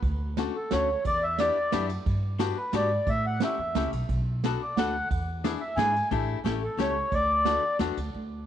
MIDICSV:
0, 0, Header, 1, 5, 480
1, 0, Start_track
1, 0, Key_signature, 2, "major"
1, 0, Tempo, 338409
1, 40, Time_signature, 3, 2, 24, 8
1, 12005, End_track
2, 0, Start_track
2, 0, Title_t, "Accordion"
2, 0, Program_c, 0, 21
2, 801, Note_on_c, 0, 69, 65
2, 1028, Note_on_c, 0, 73, 78
2, 1033, Note_off_c, 0, 69, 0
2, 1468, Note_off_c, 0, 73, 0
2, 1515, Note_on_c, 0, 74, 105
2, 1744, Note_on_c, 0, 76, 90
2, 1751, Note_off_c, 0, 74, 0
2, 1973, Note_on_c, 0, 74, 87
2, 1981, Note_off_c, 0, 76, 0
2, 2638, Note_off_c, 0, 74, 0
2, 3645, Note_on_c, 0, 71, 70
2, 3884, Note_off_c, 0, 71, 0
2, 3910, Note_on_c, 0, 74, 77
2, 4385, Note_off_c, 0, 74, 0
2, 4387, Note_on_c, 0, 76, 107
2, 4618, Note_off_c, 0, 76, 0
2, 4630, Note_on_c, 0, 78, 101
2, 4858, Note_off_c, 0, 78, 0
2, 4884, Note_on_c, 0, 76, 84
2, 5542, Note_off_c, 0, 76, 0
2, 6548, Note_on_c, 0, 74, 64
2, 6773, Note_on_c, 0, 78, 92
2, 6784, Note_off_c, 0, 74, 0
2, 7214, Note_off_c, 0, 78, 0
2, 7949, Note_on_c, 0, 76, 73
2, 8179, Note_on_c, 0, 80, 99
2, 8195, Note_off_c, 0, 76, 0
2, 8626, Note_off_c, 0, 80, 0
2, 9406, Note_on_c, 0, 69, 72
2, 9638, Note_off_c, 0, 69, 0
2, 9660, Note_on_c, 0, 73, 89
2, 10128, Note_on_c, 0, 74, 110
2, 10132, Note_off_c, 0, 73, 0
2, 11025, Note_off_c, 0, 74, 0
2, 12005, End_track
3, 0, Start_track
3, 0, Title_t, "Hollow-body jazz guitar"
3, 0, Program_c, 1, 26
3, 537, Note_on_c, 1, 57, 66
3, 546, Note_on_c, 1, 61, 56
3, 549, Note_on_c, 1, 66, 69
3, 556, Note_on_c, 1, 62, 54
3, 779, Note_off_c, 1, 57, 0
3, 779, Note_off_c, 1, 61, 0
3, 780, Note_off_c, 1, 62, 0
3, 782, Note_off_c, 1, 66, 0
3, 1020, Note_on_c, 1, 57, 68
3, 1023, Note_on_c, 1, 61, 59
3, 1036, Note_on_c, 1, 62, 51
3, 1038, Note_on_c, 1, 66, 58
3, 1261, Note_off_c, 1, 61, 0
3, 1261, Note_off_c, 1, 66, 0
3, 1263, Note_off_c, 1, 57, 0
3, 1263, Note_off_c, 1, 62, 0
3, 1986, Note_on_c, 1, 59, 64
3, 1993, Note_on_c, 1, 62, 56
3, 2000, Note_on_c, 1, 64, 49
3, 2003, Note_on_c, 1, 67, 57
3, 2219, Note_off_c, 1, 59, 0
3, 2221, Note_off_c, 1, 64, 0
3, 2222, Note_off_c, 1, 62, 0
3, 2223, Note_off_c, 1, 67, 0
3, 2446, Note_on_c, 1, 59, 65
3, 2450, Note_on_c, 1, 64, 62
3, 2455, Note_on_c, 1, 62, 65
3, 2466, Note_on_c, 1, 67, 63
3, 2687, Note_off_c, 1, 64, 0
3, 2688, Note_off_c, 1, 59, 0
3, 2692, Note_off_c, 1, 62, 0
3, 2694, Note_off_c, 1, 67, 0
3, 3397, Note_on_c, 1, 62, 69
3, 3402, Note_on_c, 1, 66, 78
3, 3408, Note_on_c, 1, 59, 64
3, 3412, Note_on_c, 1, 67, 86
3, 3636, Note_off_c, 1, 62, 0
3, 3639, Note_off_c, 1, 59, 0
3, 3639, Note_off_c, 1, 66, 0
3, 3643, Note_off_c, 1, 67, 0
3, 3880, Note_on_c, 1, 62, 63
3, 3889, Note_on_c, 1, 59, 59
3, 3890, Note_on_c, 1, 66, 68
3, 3899, Note_on_c, 1, 67, 67
3, 4120, Note_off_c, 1, 59, 0
3, 4121, Note_off_c, 1, 62, 0
3, 4124, Note_off_c, 1, 66, 0
3, 4125, Note_off_c, 1, 67, 0
3, 4854, Note_on_c, 1, 57, 58
3, 4855, Note_on_c, 1, 61, 53
3, 4865, Note_on_c, 1, 64, 52
3, 4872, Note_on_c, 1, 67, 58
3, 5088, Note_off_c, 1, 57, 0
3, 5091, Note_off_c, 1, 61, 0
3, 5092, Note_off_c, 1, 64, 0
3, 5093, Note_off_c, 1, 67, 0
3, 5330, Note_on_c, 1, 57, 61
3, 5340, Note_on_c, 1, 61, 61
3, 5343, Note_on_c, 1, 64, 51
3, 5353, Note_on_c, 1, 67, 63
3, 5573, Note_off_c, 1, 57, 0
3, 5575, Note_off_c, 1, 64, 0
3, 5578, Note_off_c, 1, 61, 0
3, 5579, Note_off_c, 1, 67, 0
3, 6306, Note_on_c, 1, 59, 74
3, 6314, Note_on_c, 1, 62, 51
3, 6317, Note_on_c, 1, 66, 51
3, 6319, Note_on_c, 1, 69, 71
3, 6542, Note_off_c, 1, 59, 0
3, 6542, Note_off_c, 1, 66, 0
3, 6543, Note_off_c, 1, 62, 0
3, 6547, Note_off_c, 1, 69, 0
3, 6785, Note_on_c, 1, 59, 58
3, 6792, Note_on_c, 1, 62, 63
3, 6795, Note_on_c, 1, 69, 79
3, 6802, Note_on_c, 1, 66, 52
3, 7020, Note_off_c, 1, 59, 0
3, 7020, Note_off_c, 1, 62, 0
3, 7021, Note_off_c, 1, 66, 0
3, 7023, Note_off_c, 1, 69, 0
3, 7722, Note_on_c, 1, 62, 75
3, 7731, Note_on_c, 1, 64, 60
3, 7736, Note_on_c, 1, 59, 69
3, 7738, Note_on_c, 1, 68, 72
3, 7961, Note_off_c, 1, 62, 0
3, 7963, Note_off_c, 1, 64, 0
3, 7963, Note_off_c, 1, 68, 0
3, 7966, Note_off_c, 1, 59, 0
3, 8193, Note_on_c, 1, 59, 72
3, 8199, Note_on_c, 1, 62, 64
3, 8210, Note_on_c, 1, 64, 45
3, 8211, Note_on_c, 1, 68, 80
3, 8432, Note_off_c, 1, 59, 0
3, 8436, Note_off_c, 1, 62, 0
3, 8437, Note_off_c, 1, 64, 0
3, 8441, Note_off_c, 1, 68, 0
3, 8675, Note_on_c, 1, 57, 76
3, 8681, Note_on_c, 1, 62, 65
3, 8684, Note_on_c, 1, 67, 68
3, 8687, Note_on_c, 1, 64, 64
3, 9051, Note_off_c, 1, 67, 0
3, 9053, Note_off_c, 1, 62, 0
3, 9054, Note_off_c, 1, 57, 0
3, 9058, Note_off_c, 1, 64, 0
3, 9145, Note_on_c, 1, 57, 67
3, 9155, Note_on_c, 1, 61, 68
3, 9158, Note_on_c, 1, 67, 79
3, 9159, Note_on_c, 1, 64, 55
3, 9387, Note_off_c, 1, 57, 0
3, 9387, Note_off_c, 1, 64, 0
3, 9388, Note_off_c, 1, 61, 0
3, 9392, Note_off_c, 1, 67, 0
3, 9624, Note_on_c, 1, 61, 65
3, 9632, Note_on_c, 1, 64, 53
3, 9635, Note_on_c, 1, 57, 74
3, 9642, Note_on_c, 1, 67, 66
3, 9865, Note_off_c, 1, 61, 0
3, 9866, Note_off_c, 1, 64, 0
3, 9870, Note_off_c, 1, 57, 0
3, 9870, Note_off_c, 1, 67, 0
3, 10575, Note_on_c, 1, 57, 64
3, 10585, Note_on_c, 1, 66, 60
3, 10588, Note_on_c, 1, 62, 47
3, 10590, Note_on_c, 1, 59, 52
3, 10823, Note_off_c, 1, 57, 0
3, 10823, Note_off_c, 1, 59, 0
3, 10826, Note_off_c, 1, 62, 0
3, 10826, Note_off_c, 1, 66, 0
3, 11054, Note_on_c, 1, 57, 75
3, 11068, Note_on_c, 1, 62, 69
3, 11070, Note_on_c, 1, 66, 80
3, 11076, Note_on_c, 1, 59, 60
3, 11312, Note_off_c, 1, 57, 0
3, 11314, Note_off_c, 1, 62, 0
3, 11315, Note_off_c, 1, 59, 0
3, 11317, Note_off_c, 1, 66, 0
3, 12005, End_track
4, 0, Start_track
4, 0, Title_t, "Upright bass"
4, 0, Program_c, 2, 32
4, 37, Note_on_c, 2, 38, 88
4, 669, Note_off_c, 2, 38, 0
4, 1020, Note_on_c, 2, 38, 73
4, 1330, Note_off_c, 2, 38, 0
4, 1483, Note_on_c, 2, 40, 91
4, 2105, Note_off_c, 2, 40, 0
4, 2450, Note_on_c, 2, 42, 84
4, 2758, Note_off_c, 2, 42, 0
4, 2927, Note_on_c, 2, 43, 92
4, 3543, Note_off_c, 2, 43, 0
4, 3868, Note_on_c, 2, 44, 85
4, 4181, Note_off_c, 2, 44, 0
4, 4352, Note_on_c, 2, 45, 88
4, 4823, Note_off_c, 2, 45, 0
4, 5078, Note_on_c, 2, 40, 65
4, 5295, Note_off_c, 2, 40, 0
4, 5311, Note_on_c, 2, 37, 68
4, 5536, Note_off_c, 2, 37, 0
4, 5561, Note_on_c, 2, 35, 69
4, 5780, Note_off_c, 2, 35, 0
4, 5802, Note_on_c, 2, 35, 78
4, 6429, Note_off_c, 2, 35, 0
4, 6761, Note_on_c, 2, 38, 77
4, 7073, Note_off_c, 2, 38, 0
4, 7244, Note_on_c, 2, 40, 78
4, 7860, Note_off_c, 2, 40, 0
4, 8176, Note_on_c, 2, 44, 84
4, 8489, Note_off_c, 2, 44, 0
4, 8664, Note_on_c, 2, 33, 92
4, 8974, Note_off_c, 2, 33, 0
4, 9133, Note_on_c, 2, 33, 80
4, 9446, Note_off_c, 2, 33, 0
4, 9608, Note_on_c, 2, 37, 74
4, 9923, Note_off_c, 2, 37, 0
4, 10099, Note_on_c, 2, 38, 86
4, 10728, Note_off_c, 2, 38, 0
4, 11055, Note_on_c, 2, 40, 61
4, 11284, Note_off_c, 2, 40, 0
4, 11303, Note_on_c, 2, 38, 62
4, 11526, Note_off_c, 2, 38, 0
4, 11553, Note_on_c, 2, 38, 75
4, 12005, Note_off_c, 2, 38, 0
4, 12005, End_track
5, 0, Start_track
5, 0, Title_t, "Drums"
5, 36, Note_on_c, 9, 36, 77
5, 41, Note_on_c, 9, 51, 33
5, 178, Note_off_c, 9, 36, 0
5, 183, Note_off_c, 9, 51, 0
5, 524, Note_on_c, 9, 38, 65
5, 524, Note_on_c, 9, 51, 44
5, 666, Note_off_c, 9, 38, 0
5, 666, Note_off_c, 9, 51, 0
5, 1004, Note_on_c, 9, 38, 66
5, 1004, Note_on_c, 9, 51, 40
5, 1146, Note_off_c, 9, 38, 0
5, 1146, Note_off_c, 9, 51, 0
5, 1488, Note_on_c, 9, 51, 45
5, 1492, Note_on_c, 9, 36, 75
5, 1630, Note_off_c, 9, 51, 0
5, 1634, Note_off_c, 9, 36, 0
5, 1963, Note_on_c, 9, 38, 59
5, 1963, Note_on_c, 9, 51, 46
5, 2105, Note_off_c, 9, 38, 0
5, 2105, Note_off_c, 9, 51, 0
5, 2441, Note_on_c, 9, 38, 59
5, 2441, Note_on_c, 9, 51, 43
5, 2583, Note_off_c, 9, 38, 0
5, 2583, Note_off_c, 9, 51, 0
5, 2684, Note_on_c, 9, 51, 42
5, 2826, Note_off_c, 9, 51, 0
5, 2925, Note_on_c, 9, 51, 41
5, 2927, Note_on_c, 9, 36, 73
5, 3067, Note_off_c, 9, 51, 0
5, 3068, Note_off_c, 9, 36, 0
5, 3395, Note_on_c, 9, 38, 64
5, 3395, Note_on_c, 9, 51, 53
5, 3536, Note_off_c, 9, 38, 0
5, 3536, Note_off_c, 9, 51, 0
5, 3869, Note_on_c, 9, 38, 58
5, 3869, Note_on_c, 9, 51, 44
5, 4011, Note_off_c, 9, 38, 0
5, 4011, Note_off_c, 9, 51, 0
5, 4350, Note_on_c, 9, 51, 42
5, 4352, Note_on_c, 9, 36, 73
5, 4492, Note_off_c, 9, 51, 0
5, 4493, Note_off_c, 9, 36, 0
5, 4826, Note_on_c, 9, 38, 64
5, 4826, Note_on_c, 9, 51, 40
5, 4968, Note_off_c, 9, 38, 0
5, 4968, Note_off_c, 9, 51, 0
5, 5320, Note_on_c, 9, 38, 63
5, 5320, Note_on_c, 9, 51, 40
5, 5462, Note_off_c, 9, 38, 0
5, 5462, Note_off_c, 9, 51, 0
5, 5567, Note_on_c, 9, 51, 39
5, 5709, Note_off_c, 9, 51, 0
5, 5798, Note_on_c, 9, 51, 40
5, 5802, Note_on_c, 9, 36, 71
5, 5940, Note_off_c, 9, 51, 0
5, 5944, Note_off_c, 9, 36, 0
5, 6292, Note_on_c, 9, 38, 64
5, 6292, Note_on_c, 9, 51, 48
5, 6434, Note_off_c, 9, 38, 0
5, 6434, Note_off_c, 9, 51, 0
5, 6770, Note_on_c, 9, 38, 65
5, 6770, Note_on_c, 9, 51, 46
5, 6912, Note_off_c, 9, 38, 0
5, 6912, Note_off_c, 9, 51, 0
5, 7242, Note_on_c, 9, 51, 44
5, 7245, Note_on_c, 9, 36, 69
5, 7384, Note_off_c, 9, 51, 0
5, 7387, Note_off_c, 9, 36, 0
5, 7721, Note_on_c, 9, 38, 65
5, 7721, Note_on_c, 9, 51, 49
5, 7863, Note_off_c, 9, 38, 0
5, 7863, Note_off_c, 9, 51, 0
5, 8207, Note_on_c, 9, 38, 58
5, 8207, Note_on_c, 9, 51, 43
5, 8349, Note_off_c, 9, 38, 0
5, 8349, Note_off_c, 9, 51, 0
5, 8454, Note_on_c, 9, 51, 36
5, 8596, Note_off_c, 9, 51, 0
5, 8672, Note_on_c, 9, 36, 78
5, 8676, Note_on_c, 9, 51, 35
5, 8814, Note_off_c, 9, 36, 0
5, 8817, Note_off_c, 9, 51, 0
5, 9157, Note_on_c, 9, 38, 58
5, 9157, Note_on_c, 9, 51, 43
5, 9299, Note_off_c, 9, 38, 0
5, 9299, Note_off_c, 9, 51, 0
5, 9640, Note_on_c, 9, 38, 60
5, 9640, Note_on_c, 9, 51, 39
5, 9782, Note_off_c, 9, 38, 0
5, 9782, Note_off_c, 9, 51, 0
5, 10096, Note_on_c, 9, 51, 38
5, 10097, Note_on_c, 9, 36, 68
5, 10238, Note_off_c, 9, 51, 0
5, 10239, Note_off_c, 9, 36, 0
5, 10570, Note_on_c, 9, 38, 59
5, 10570, Note_on_c, 9, 51, 46
5, 10712, Note_off_c, 9, 38, 0
5, 10712, Note_off_c, 9, 51, 0
5, 11053, Note_on_c, 9, 38, 62
5, 11053, Note_on_c, 9, 51, 46
5, 11195, Note_off_c, 9, 38, 0
5, 11195, Note_off_c, 9, 51, 0
5, 11307, Note_on_c, 9, 51, 39
5, 11448, Note_off_c, 9, 51, 0
5, 12005, End_track
0, 0, End_of_file